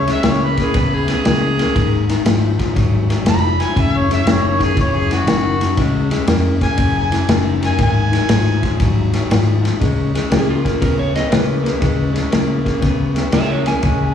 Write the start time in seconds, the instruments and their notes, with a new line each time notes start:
Already playing: fingered electric bass C#2
0.07 clean electric guitar C#3 G#3, snare, ride
0.12 harmonica E5
0.23 fingered electric bass C#2, clean electric guitar C#3 A#3, snare, ride
0.30 harmonica C#5
0.44 harmonica B4
0.57 clean electric guitar C#3 A#3, kick, snare, ride
0.62 harmonica G#4
0.74 fingered electric bass C#2, clean electric guitar C#3 B3, harmonica B4, kick, snare, ride
0.94 harmonica G#4
1.08 clean electric guitar C#3 B3, harmonica G#4, snare, ride
1.25 fingered electric bass C#2, clean electric guitar C#3 A#3, snare, ride
1.58 clean electric guitar C#3 A#3, snare, ride
1.75 fingered electric bass G#1, clean electric guitar G#2 D#3, kick, snare, ride
2.08 clean electric guitar G#2 D#3, snare, ride
2.24 fingered electric bass G#1, clean electric guitar G#2 F3, snare, ride
2.59 clean electric guitar G#2 F3, kick, snare, ride
2.76 fingered electric bass G#1, clean electric guitar G#2 F#3, kick, snare, ride
3.10 clean electric guitar G#2 F#3, snare, ride
3.25 fingered electric bass F1, clean electric guitar G#2 F3, harmonica B5, snare, ride
3.60 clean electric guitar G#2 F3, harmonica G#5, snare, ride
3.75 fingered electric bass F#1, clean electric guitar F#2 C#3, kick, snare, ride
3.80 harmonica E5
3.97 harmonica C#5
4.10 clean electric guitar F#2 C#3, harmonica E5, snare, ride
4.25 fingered electric bass F#1, clean electric guitar F#2 D#3, snare, ride
4.31 harmonica C#5
4.47 harmonica C#5
4.58 clean electric guitar F#2 D#3, kick, snare, ride
4.64 harmonica G#4
4.75 fingered electric bass F#1, clean electric guitar F#2 E3, kick, snare, ride
4.80 harmonica C#5
4.96 harmonica G#4
5.09 clean electric guitar F#2 E3, snare, ride
5.13 harmonica F#4
5.24 fingered electric bass F#1, clean electric guitar F#2 D#3, snare, ride
5.60 clean electric guitar F#2 D#3, snare, ride
5.77 fingered electric bass C#2, clean electric guitar C#3 G#3, kick, snare, ride
6.11 clean electric guitar C#3 G#3, snare, ride
6.27 fingered electric bass F2, clean electric guitar C#3 A#3, snare, ride
6.61 clean electric guitar C#3 A#3, harmonica G#5, kick, snare, ride
6.77 fingered electric bass F#1, clean electric guitar F#2 C#3, kick, snare, ride
6.98 harmonica G#5
7.11 clean electric guitar F#2 E3, snare, ride
7.28 fingered electric bass F#1, clean electric guitar F#2 D#3, snare, ride
7.61 clean electric guitar F#2 D#3, harmonica G#5, snare, ride
7.78 fingered electric bass G#1, clean electric guitar G#2 D#3, kick, snare, ride
7.82 harmonica G#5
8.11 clean electric guitar G#2 D#3, snare, ride
8.28 fingered electric bass G#1, clean electric guitar G#2 F3, snare, ride
8.62 clean electric guitar G#2 F3, kick, snare, ride
8.80 fingered electric bass G#1, clean electric guitar G#2 F#3, kick, snare, ride
9.14 clean electric guitar G#2 F#3, snare, ride
9.30 fingered electric bass G#1, clean electric guitar G#2 F3, snare, ride
9.62 clean electric guitar G#2 F3, snare, ride
9.80 fingered electric bass C#2, clean electric guitar C#3 G#3, kick, snare, ride
10.14 clean electric guitar C#3 G#3, snare, ride
10.30 fingered electric bass C#2, clean electric guitar C#3 A#3, electric slide guitar G#4, snare, ride
10.50 electric slide guitar F4
10.64 clean electric guitar C#3 A#3, kick, snare, ride
10.80 fingered electric bass C#2, clean electric guitar C#3 B3, electric slide guitar A#4, kick, snare, ride
10.99 electric slide guitar C#5
11.14 clean electric guitar C#3 B3, electric slide guitar D#5, snare, ride
11.30 fingered electric bass C#2, clean electric guitar C#3 A#3, electric slide guitar B4, snare, ride
11.63 clean electric guitar C#3 A#3, snare, ride
11.80 fingered electric bass C#2, clean electric guitar C#3 G#3, kick, snare, ride
12.13 clean electric guitar C#3 G#3, snare, ride
12.30 fingered electric bass C#2, clean electric guitar C#3 A#3, snare, ride
12.65 clean electric guitar C#3 A#3, kick, snare, ride
12.81 fingered electric bass C#2, clean electric guitar C#3 B3, kick, snare, ride
13.14 clean electric guitar C#3 B3, snare, ride
13.32 fingered electric bass C#2, clean electric guitar C#3 A#3, electric slide guitar G#4 E5, snare, ride
13.50 electric slide guitar F4 C#5
13.66 clean electric guitar C#3 A#3, electric slide guitar G#5, snare, ride
13.83 fingered electric bass C#2, clean electric guitar C#3 G#3, kick, snare, ride